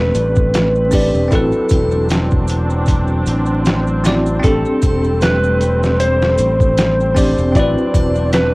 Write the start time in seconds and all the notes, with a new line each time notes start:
Already playing: E1 G3 A3 C4 D4 G4 A4 B4
0.15 A1, closed hi-hat, maracas
0.36 kick, maracas
0.54 snare, closed hi-hat, maracas
0.75 maracas
0.91 C4 D4 G4 D5, kick, open hi-hat, triangle, maracas
1.14 E1, maracas
1.28 A1 F#3 C4 E4, kick, closed hi-hat, maracas
1.33 D4 F#4 A4 B4
1.52 maracas
1.69 E1, kick, closed hi-hat, triangle, maracas
1.91 maracas
2.09 snare, closed hi-hat, maracas
2.31 kick, maracas
2.48 closed hi-hat, maracas
2.70 maracas
2.86 kick, closed hi-hat, maracas
3.07 maracas
3.26 A1, closed hi-hat, maracas
3.46 maracas
3.65 snare, closed hi-hat, maracas
3.87 maracas
4.04 C4 E4 F#4 D5, snare, closed hi-hat, maracas
4.26 maracas
4.39 G3 C4 D4, maracas
4.44 A1 A3 G4 A4, kick, closed hi-hat
4.65 maracas
4.82 E1, kick, closed hi-hat, triangle, maracas
5.04 maracas
5.21 B4, snare, closed hi-hat, maracas
5.44 maracas
5.61 closed hi-hat, maracas
5.83 snare, maracas
6.00 C5, closed hi-hat, maracas
6.22 snare, maracas
6.38 A1, closed hi-hat, maracas
6.60 kick, maracas
6.77 snare, closed hi-hat, maracas
7.00 maracas
7.15 C4 D4 G4 D5, kick, open hi-hat, triangle, maracas
7.38 E1, maracas
7.52 A1 F#3 C4 D4 E4, kick, closed hi-hat
7.56 F#4 B4 D5, maracas
7.78 maracas
7.94 E1, kick, closed hi-hat, triangle, maracas
8.15 maracas
8.33 B4, snare, closed hi-hat, maracas